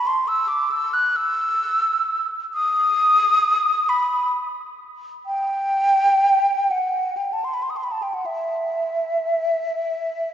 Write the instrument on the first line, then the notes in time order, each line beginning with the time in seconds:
flute
0.07 C6
0.28 E6
0.48 D6
0.71 E6
0.93 F#6
1.16 E6
2.54 D#6
3.89 B5
5.26 G5
6.71 F#5
7.17 G5
7.33 A5
7.44 C6
7.54 B5
7.63 C6
7.70 D#6
7.77 C6
7.84 B5
7.92 A5
8.02 G5
8.14 F#5
8.26 E5